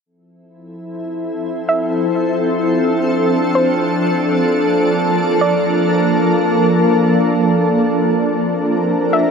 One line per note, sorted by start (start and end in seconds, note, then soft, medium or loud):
0.06 7.46 F3 medium
0.06 3.74 C4 medium
0.06 1.90 E4 medium
0.06 7.46 A4 medium
1.69 1.91 E5 medium
1.92 9.31 D4 medium
3.55 3.77 C5 medium
3.78 7.47 A#3 medium
5.41 5.63 D5 medium
7.50 9.31 F3 medium
7.50 9.31 C4 medium
7.50 9.31 A#4 medium
9.13 9.31 E5 medium